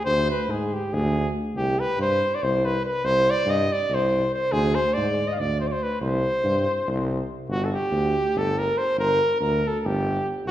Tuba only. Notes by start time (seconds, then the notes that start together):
0.06 D2
0.49 G#2
0.93 D2
1.55 C2
1.98 G2
2.43 C2
3.04 C2
3.46 G2
3.90 C2
4.52 D2
4.97 G#2
5.39 D2
6.01 C2
6.44 G2
6.88 C2
7.49 G1
7.91 D2
8.35 G1
8.97 G1
9.40 D2
9.84 G1
10.46 C2